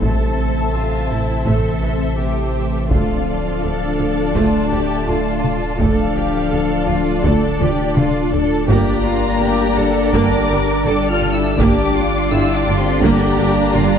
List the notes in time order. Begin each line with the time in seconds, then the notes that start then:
0.01 A1 C3 A3 C4 A4 C5 E5 A5, taiko
0.74 A1 C3 F4
1.10 A1 E3 E4
1.46 A1 E3 A3 A4 E5, taiko
1.82 A1 E3
2.18 A1 C3 G4
2.55 E3 E5
2.91 D1 D2 D3 F3 A3 D4 F4 A4 D5 F5, taiko
3.63 D2 D3 A4
3.99 D2 F3
4.35 D2 A3 F4 A5, taiko
4.71 D2 F3 G4
5.07 D2 D3 F4
5.44 taiko mid
5.79 D1 D2 D3 F3 A3 D4 F4 A4 D5 F5, taiko
6.16 G4
6.52 D2 D3 A4
6.88 D2 F3 F4
7.24 D2 D3 A3 A4 D5, taiko
7.60 D2 F3 G4, taiko mid
7.96 D2 D3 F4, taiko mid
8.33 A4, taiko low
8.68 G1 D3 G3 A#3 D4 G4 D5 A#5, taiko
9.05 F4
9.41 G1 D3 G4
9.77 G1 G3 A4
10.13 G1 A#3 D4 A#4 D6, taiko
10.51 G1 G3
10.85 G1 D3 D4 A4 D6
11.09 F4 F6
11.22 taiko mid
11.33 E4 E6
11.58 G1 D3 G3 A#3 D4 G4 D5 D6, taiko
11.95 F4
12.31 G1 D3 E4 E6
12.55 D4 D6
12.67 G1 G3
12.79 C4 C6
13.02 G1 A#3 G4 A#5, taiko
13.39 G1 G3
13.75 G1 D3 F4